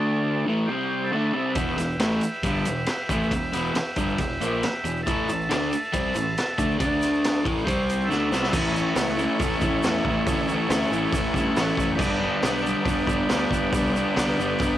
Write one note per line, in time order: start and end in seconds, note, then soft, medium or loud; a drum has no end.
0.00 0.45 D3 medium
0.00 0.46 A3 loud
0.00 0.46 D4 loud
0.00 0.45 A4 medium
0.00 0.46 D5 medium
0.00 0.46 A5 medium
0.46 0.68 A2 medium
0.46 0.68 E3 loud
0.46 0.69 A3 loud
0.66 1.12 C3 medium
0.66 1.12 G3 loud
0.66 1.11 G4 medium
0.66 1.12 C5 medium
0.66 1.12 G5 medium
0.71 1.13 C4 medium
1.04 1.52 A4 medium
1.04 1.52 E5 medium
1.04 1.54 A5 medium
1.13 1.33 D3 medium
1.13 1.34 A3 medium
1.13 1.35 D4 loud
1.33 1.55 C3 medium
1.33 1.56 G3 medium
1.33 1.56 C4 loud
1.51 5.00 B4 medium
1.51 5.01 E5 medium
1.51 5.02 G5 medium
1.55 1.76 E1 medium
1.55 1.76 E2 medium
1.55 1.77 B2 medium
1.55 1.78 E3 medium
1.55 kick loud
1.55 ride medium
1.55 shaker medium
1.77 1.98 E1 medium
1.77 1.95 E2 medium
1.77 1.96 B2 medium
1.77 snare soft
1.77 ride medium
1.77 shaker medium
1.91 shaker soft
1.98 2.20 A1 medium
1.98 2.21 A2 medium
1.98 2.22 E3 medium
1.98 2.22 A3 medium
1.98 snare loud
1.98 ride loud
1.98 shaker medium
2.21 muted overdriven electric guitar stroke medium
2.21 ride medium
2.21 shaker medium
2.43 2.64 G1 medium
2.43 2.65 G2 medium
2.43 2.66 D3 loud
2.43 2.66 G3 loud
2.43 kick loud
2.43 ride medium
2.43 shaker medium
2.65 2.87 E1 medium
2.65 2.84 E2 medium
2.65 2.84 B2 medium
2.65 ride medium
2.65 shaker loud
2.86 snare loud
2.86 ride medium
2.86 shaker medium
3.09 3.30 A1 loud
3.09 3.31 A2 medium
3.09 3.32 E3 loud
3.09 3.32 A3 medium
3.09 kick loud
3.09 ride medium
3.09 shaker loud
3.23 shaker soft
3.31 3.52 E1 medium
3.31 3.50 E2 medium
3.31 3.50 B2 medium
3.31 kick medium
3.31 ride loud
3.31 shaker medium
3.53 3.74 E1 loud
3.53 3.74 E2 medium
3.53 3.75 B2 medium
3.53 3.75 E3 medium
3.53 snare soft
3.53 ride medium
3.53 shaker medium
3.66 shaker soft
3.74 muted picked electric bass stroke soft
3.74 muted overdriven electric guitar stroke medium
3.74 snare loud
3.74 ride loud
3.74 shaker medium
3.96 4.17 G1 medium
3.96 4.18 G2 medium
3.96 4.18 D3 medium
3.96 4.19 G3 loud
3.96 kick loud
3.96 ride medium
3.96 shaker medium
4.09 shaker soft
4.18 4.39 E1 medium
4.18 4.37 E2 medium
4.18 4.37 B2 medium
4.18 kick medium
4.18 ride loud
4.18 shaker medium
4.41 4.61 A#1 medium
4.41 4.62 A#2 medium
4.41 4.63 F3 medium
4.41 4.63 A#3 loud
4.41 ride medium
4.41 shaker medium
4.63 muted overdriven electric guitar stroke medium
4.63 muted picked electric bass stroke soft
4.63 snare loud
4.63 ride medium
4.63 shaker medium
4.84 5.05 E1 medium
4.84 5.02 E2 medium
4.84 5.02 B2 medium
4.84 ride medium
4.84 shaker medium
4.97 shaker soft
5.03 5.27 A2 medium
5.03 6.75 A4 medium
5.03 6.76 E5 medium
5.03 6.77 A5 medium
5.03 shaker medium
5.07 5.27 A1 loud
5.07 5.28 E3 loud
5.07 5.29 A3 loud
5.07 kick loud
5.07 ride medium
5.28 5.49 A1 medium
5.28 5.46 A2 medium
5.28 5.46 E3 medium
5.28 ride medium
5.28 shaker medium
5.40 shaker soft
5.49 5.70 D2 medium
5.49 5.71 D3 medium
5.49 5.71 A3 loud
5.49 5.72 D4 loud
5.49 snare loud
5.49 ride loud
5.49 shaker medium
5.72 muted overdriven electric guitar stroke medium
5.72 muted picked electric bass stroke soft
5.72 ride medium
5.72 shaker medium
5.84 shaker soft
5.93 6.14 C2 medium
5.93 6.14 C3 medium
5.93 6.15 G3 loud
5.93 6.15 C4 loud
5.93 kick loud
5.93 ride medium
5.93 shaker medium
6.15 6.36 A1 medium
6.15 6.33 A2 medium
6.15 6.33 E3 medium
6.15 ride medium
6.15 shaker loud
6.38 snare loud
6.38 ride medium
6.38 shaker medium
6.58 6.79 D2 loud
6.58 6.77 D3 medium
6.58 6.78 A3 loud
6.58 6.79 D4 medium
6.58 kick loud
6.58 ride medium
6.58 shaker loud
6.71 shaker soft
6.78 7.42 D2 medium
6.78 7.44 D3 medium
6.78 7.45 A3 medium
6.78 7.45 D4 loud
6.78 7.46 A4 medium
6.78 7.46 D5 medium
6.78 7.46 A5 medium
6.78 kick loud
6.78 ride loud
6.78 shaker medium
7.02 snare soft
7.02 ride medium
7.02 shaker medium
7.14 shaker soft
7.24 snare loud
7.24 ride loud
7.24 shaker medium
7.44 7.66 A1 loud
7.44 7.65 A2 medium
7.44 7.65 E3 medium
7.44 7.67 A3 medium
7.44 kick loud
7.44 ride medium
7.58 shaker soft
7.64 8.07 C2 medium
7.64 8.08 C3 medium
7.64 8.09 G3 loud
7.64 8.10 C4 loud
7.64 8.09 G4 medium
7.64 8.09 C5 medium
7.64 8.10 G5 medium
7.64 kick loud
7.68 ride loud
7.68 shaker medium
7.89 ride medium
7.89 shaker loud
8.03 8.49 E4 medium
8.03 8.48 A4 medium
8.03 8.52 E5 medium
8.09 8.31 D2 medium
8.09 8.30 D3 medium
8.09 8.31 A3 medium
8.09 8.32 D4 loud
8.09 snare medium
8.09 shaker medium
8.31 8.52 C2 medium
8.31 8.53 C3 medium
8.31 8.53 G3 medium
8.31 8.54 C4 loud
8.31 snare medium
8.31 shaker medium
8.43 snare medium
8.50 8.83 A1 medium
8.50 9.21 A2 medium
8.50 8.94 E3 medium
8.50 11.94 E4 medium
8.50 11.94 A4 medium
8.50 11.95 C#5 medium
8.50 kick loud
8.50 crash loud
8.50 shaker loud
8.54 8.78 A3 loud
8.54 8.77 C#4 medium
8.54 8.74 E4 loud
8.74 8.97 C#4 medium
8.74 8.99 E4 medium
8.74 shaker medium
8.79 8.97 A3 medium
8.95 9.26 C#2 medium
8.95 9.21 E3 medium
8.95 9.19 A3 medium
8.95 9.18 C#4 medium
8.95 snare loud
8.95 open hi-hat medium
8.95 shaker loud
8.99 9.17 E4 medium
9.08 snare soft
9.17 9.37 E3 medium
9.17 9.39 A3 medium
9.17 9.40 C#4 medium
9.17 9.42 E4 loud
9.17 shaker medium
9.22 9.64 A2 medium
9.39 9.55 A2 medium
9.39 9.83 E3 medium
9.39 9.64 A3 medium
9.39 9.62 C#4 medium
9.39 kick loud
9.39 open hi-hat medium
9.39 shaker loud
9.43 9.60 E4 medium
9.61 9.76 A1 medium
9.61 9.86 C#4 medium
9.61 9.87 E4 medium
9.61 kick medium
9.61 shaker medium
9.65 9.85 A3 medium
9.83 9.99 E2 medium
9.83 10.26 A2 medium
9.83 10.27 E3 medium
9.83 10.09 A3 loud
9.83 10.08 C#4 loud
9.83 snare loud
9.83 open hi-hat medium
9.83 shaker loud
9.88 10.05 E4 loud
10.04 10.19 A1 medium
10.04 10.30 E4 medium
10.04 kick medium
10.09 10.28 A3 medium
10.09 10.29 C#4 medium
10.26 10.56 D2 medium
10.26 10.70 A2 loud
10.26 10.67 E3 medium
10.26 10.52 A3 medium
10.26 10.50 C#4 loud
10.26 kick loud
10.26 open hi-hat medium
10.26 shaker loud
10.31 10.48 E4 medium
10.49 10.71 C#4 medium
10.49 10.72 E4 medium
10.49 shaker medium
10.53 10.70 A3 medium
10.69 10.84 D2 loud
10.69 10.94 E3 medium
10.69 10.93 A3 medium
10.69 10.92 C#4 medium
10.69 snare loud
10.69 open hi-hat medium
10.69 shaker loud
10.73 10.90 E4 medium
10.81 snare soft
10.91 11.06 A1 medium
10.91 11.12 E3 medium
10.91 11.14 A3 medium
10.91 11.15 C#4 loud
10.91 11.17 E4 loud
10.91 shaker medium
10.96 11.37 A2 medium
11.12 11.27 A1 medium
11.12 11.56 E3 medium
11.12 11.38 A3 medium
11.12 kick loud
11.12 open hi-hat medium
11.12 shaker loud
11.17 11.36 C#4 medium
11.17 11.34 E4 medium
11.34 11.49 G2 medium
11.34 11.58 C#4 medium
11.34 11.59 E4 medium
11.34 kick medium
11.34 shaker medium
11.39 11.57 A3 medium
11.56 11.71 A1 loud
11.56 11.96 A2 loud
11.56 11.98 E3 medium
11.56 11.80 A3 loud
11.56 11.79 C#4 loud
11.56 snare loud
11.56 open hi-hat medium
11.56 shaker loud
11.60 11.77 E4 loud
11.77 11.92 F#1 medium
11.77 12.00 C#4 medium
11.77 11.99 E4 medium
11.77 kick medium
11.77 shaker medium
11.82 11.99 A3 medium
11.92 14.78 G4 medium
11.92 14.78 B4 medium
11.92 14.78 D5 medium
11.97 12.28 G1 loud
11.97 12.67 G2 medium
11.97 12.40 D3 loud
11.97 12.24 G3 loud
11.97 12.22 B3 medium
11.97 kick loud
11.97 crash loud
12.01 12.19 D4 loud
12.01 shaker loud
12.20 12.45 B3 medium
12.20 12.46 D4 medium
12.25 12.43 G3 medium
12.41 12.73 B1 medium
12.41 12.66 D3 medium
12.41 12.65 G3 medium
12.41 snare loud
12.41 open hi-hat medium
12.45 12.63 B3 medium
12.45 12.62 D4 medium
12.45 shaker loud
12.54 snare soft
12.62 12.84 G3 medium
12.62 12.85 B3 loud
12.62 12.86 D4 medium
12.66 13.09 G2 medium
12.66 12.82 D3 medium
12.66 shaker medium
12.83 13.00 G2 medium
12.83 13.27 D3 medium
12.83 13.10 G3 medium
12.83 13.08 B3 medium
12.83 kick loud
12.83 open hi-hat medium
12.88 13.05 D4 loud
12.88 shaker medium
13.07 13.22 G1 medium
13.07 13.29 B3 medium
13.07 13.30 D4 medium
13.07 kick medium
13.07 shaker medium
13.11 13.28 G3 medium
13.27 13.44 D2 medium
13.27 13.70 G2 loud
13.27 13.71 D3 loud
13.27 13.52 G3 loud
13.27 13.50 B3 loud
13.27 snare loud
13.27 open hi-hat medium
13.31 13.47 D4 loud
13.31 shaker loud
13.48 13.66 G1 medium
13.48 13.74 B3 medium
13.48 13.75 D4 medium
13.48 kick medium
13.53 13.72 G3 medium
13.53 shaker medium
13.72 14.02 C2 loud
13.72 14.16 G2 medium
13.72 14.14 D3 medium
13.72 13.97 G3 medium
13.72 13.96 B3 medium
13.72 kick loud
13.72 open hi-hat medium
13.72 shaker loud
13.76 13.92 D4 loud
13.93 14.17 B3 medium
13.93 14.18 D4 medium
13.93 shaker medium
13.98 14.15 G3 medium
14.15 14.31 C2 loud
14.15 14.40 D3 medium
14.15 14.39 G3 medium
14.15 14.38 B3 medium
14.15 snare loud
14.15 open hi-hat medium
14.15 shaker loud
14.19 14.37 D4 medium
14.28 snare soft
14.38 14.53 G1 medium
14.38 14.58 D3 medium
14.38 14.59 G3 medium
14.38 14.61 B3 medium
14.38 14.62 D4 loud
14.38 shaker medium
14.42 14.78 G2 medium
14.58 14.74 G1 medium
14.58 14.78 D3 medium
14.58 14.78 G3 medium
14.58 14.78 B3 medium
14.58 kick loud
14.58 open hi-hat medium
14.58 shaker loud
14.63 14.78 D4 medium